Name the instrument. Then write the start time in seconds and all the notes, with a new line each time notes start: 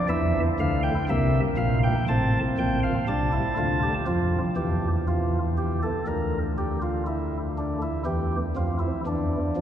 pipe organ
0.08 E2 E3 E4 E5
0.59 D2 D3 F5
0.83 G5
1.09 C2 C3 A#3 E5
1.57 A#1 A#2 F5
1.83 G5
2.08 A1 A2 C4 A5
2.58 A#1 A#2 G5
2.83 F5
3.08 C2 C3 D4 A5
3.33 E4
3.57 D2 D3 F4
3.83 G4
4.07 F2 F3 F4
4.56 E2 E3 G4
5.08 F4
5.58 G4
5.83 A4
6.07 D2 D3 A#4
6.58 G4
6.82 F4
7.07 E4
7.58 D4
7.82 E4
8.05 E2 E3 G4
8.56 F2 F3 F4
8.79 E4
9.06 E2 E3 D4
9.56 F2 F3